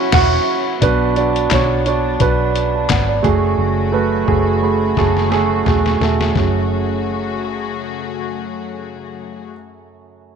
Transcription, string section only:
Already playing: F#3 C#4 E4
0.81 F#3 B3 D4
3.24 C#3 A3 F#4
6.35 C#3 F#3 A3 F#4 G#4

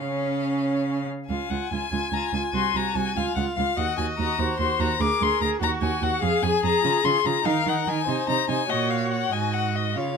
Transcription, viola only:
0.00 C#4
1.29 F4
1.50 F4
1.71 F4
1.92 F4
2.13 F4
2.34 F4
2.54 F#4
2.75 F#4
2.96 F#4
3.16 F4
3.37 F4
3.58 F4
3.78 F#4
3.98 F#4
4.19 F#4
4.39 F#4
4.59 F#4
4.80 F#4
5.01 G#4
5.21 G#4
5.41 G#4
5.61 F#4
5.82 F#4
6.02 F#4
6.22 G#4
6.43 G#4
6.63 G#4
6.83 F4
7.04 F4
7.24 F4
7.44 D#4
7.66 D#4
7.87 D#4
8.07 D#4
8.28 D#4
8.48 D#4
8.70 F#4
9.33 F#4
9.96 F4

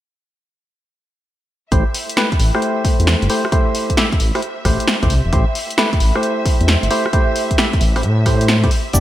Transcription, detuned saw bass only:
1.72 A1
2.40 A1
3.00 E2
3.22 G1
4.20 A1
4.65 A1
5.03 A1
5.10 C2
5.25 E1
5.33 A1
6.00 A1
6.61 E2
6.83 G1
7.81 A1
8.03 A2
8.94 E1

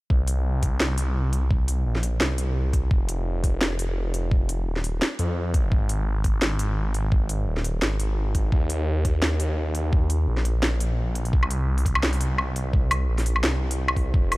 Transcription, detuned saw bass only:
0.10 C2
0.80 C2
1.86 A#1
2.21 C2
2.91 F1
3.62 F1
4.67 D#1
5.19 F2
5.72 G#1
6.42 G#1
7.47 D#1
7.82 G#1
8.52 D#2
9.23 D#2
10.28 A#1
10.63 A#1
11.33 C2
12.03 C2
13.09 A#1
13.44 C2
14.14 F1

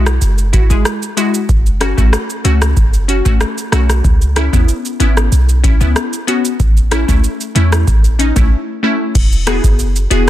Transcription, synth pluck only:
0.53 E4 F#4
0.70 G#3 E4 G#4
1.17 G#3 E4 F#4
1.81 C#4 F#4
1.97 A3 C#4 F#4
2.44 A3 C#4 F#4
3.08 C#4 F#4
3.25 A3 C#4 F#4
3.72 A3 C#4 F#4
4.36 C#4 E4
4.53 B3 C#4 E4
5.00 B3 C#4 E4
5.64 C#4 E4
5.80 B3 C#4 E4
6.27 B3 C#4 F#4
6.91 C#4 E4
7.08 A3 C#4 E4
7.55 A3 C#4 E4
8.19 C#4 D#4
8.36 A3 C#4 E4
8.83 A3 C#4 E4
9.47 B3 E4 F#4 G#4
10.10 B3 E4 F#4 G#4

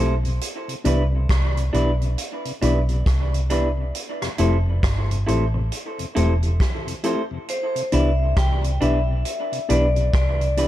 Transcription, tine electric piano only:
Already playing: A3 C4 E4 G4
0.84 B3 D4 E4 G4
1.73 B3 D4 E4 G4
2.62 B3 D4 E4 G4
2.89 E4 G4
3.50 B3 D4 E4 G4
4.39 A3 C4 E4 G4
5.27 A3 C4 E4 G4
6.16 A3 C4 E4 G4
6.43 E4 G4
7.04 A3 C4 E4 G4
7.92 B3 D4 E4 G4
8.81 B3 D4 E4 G4
9.69 B3 D4 E4 G4
9.96 E4 G4
10.57 B3 D4 E4 G4

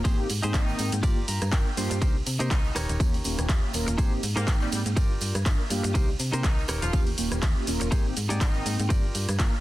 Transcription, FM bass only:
0.05 G#1
0.30 G#2
0.44 G#2
0.54 G#1
0.79 G#2
0.93 G#2
1.03 G1
1.28 G2
1.42 G2
1.52 G1
1.77 G2
1.91 G2
2.02 C2
2.27 C3
2.40 C3
2.51 C2
2.76 D#1
2.89 D#1
3.00 D#2
3.25 D#1
3.38 D#1
3.49 D#2
3.74 D#1
3.88 D#1
3.98 G#1
4.23 G#2
4.37 G#2
4.48 G#1
4.72 G#2
4.86 G#2
4.97 G1
5.21 G2
5.35 G2
5.46 G1
5.70 G2
5.84 G2
5.95 C2
6.20 C3
6.33 C3
6.44 C2
6.69 D#1
6.83 D#1
6.93 D#2
7.18 D#1
7.32 D#1
7.43 D#2
7.68 D#1
7.81 D#1
7.92 G#1
8.17 G#2
8.31 G#2
8.41 G#1
8.66 G#2
8.79 G#2
8.90 G1
9.15 G2
9.29 G2
9.39 G1

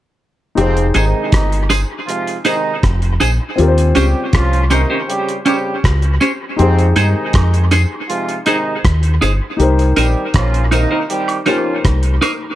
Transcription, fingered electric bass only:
0.58 F1
0.96 G#1
1.33 G1
2.83 F1
3.22 A#1
3.59 D#2
3.97 C#2
4.34 C2
5.85 C#2
6.59 F2
6.96 G2
7.34 F2
8.85 D#2
9.22 G1
9.60 C2
9.97 A#1
10.35 A#1
11.85 C2

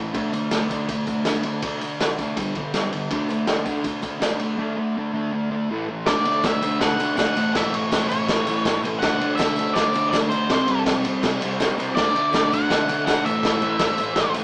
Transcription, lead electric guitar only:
6.06 D5
6.46 E5
6.81 F#5
7.18 F#5
7.57 E5
7.75 C#5
8.09 C#5
8.99 F#5
9.35 E5
9.73 D5
10.10 D5
10.29 C5
11.95 D5
12.53 F#5
13.06 F#5
13.26 E5

